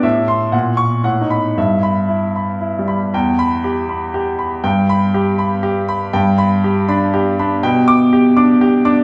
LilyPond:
<<
  \new Staff \with { instrumentName = "Grand piano" } { \time 3/4 \key e \minor \tempo 4 = 120 << { r8 c'''8 r8 cis'''8 r8 b''8 | r8 b''4 r4. | r8 b''4 r4. | r8 b''4 r4. |
r8 b''4 r4. | r8 d'''4 r4. | } \\ { e''4 fis''4 fis''4 | e''4 e'8 b''8 e'8 b''8 | g''4 g'8 b''8 g'8 b''8 | g''4 g'8 b''8 g'8 b''8 |
g''4 g'8 b''8 g'8 b''8 | g''4 g'8 d'''8 g'8 d'''8 | } >> }
  \new Staff \with { instrumentName = "Grand piano" } { \clef bass \time 3/4 \key e \minor a,4 ais,4 \tuplet 3/2 { a,8 dis'4 } | g,2~ \tuplet 3/2 { g,8 g4 } | e,2. | g,2. |
g,4. d'8 r8 d'8 | b,4. d'8 r8 d'8 | }
>>